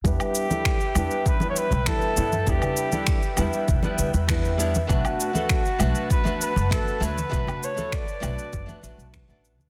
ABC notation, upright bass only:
X:1
M:4/4
L:1/16
Q:1/4=99
K:Em
V:1 name="Upright bass" clef=bass
E,, z4 z E,, z4 B,,, z2 G,, z | E,, z4 z E,, z E,,, z D,, E,,4- E,, | B,,, z4 z B,,, z4 F,,, z2 D,, z | B,,, z4 z B,,, z F,,, z A,,, B,,,2 A,,,2 D,, |]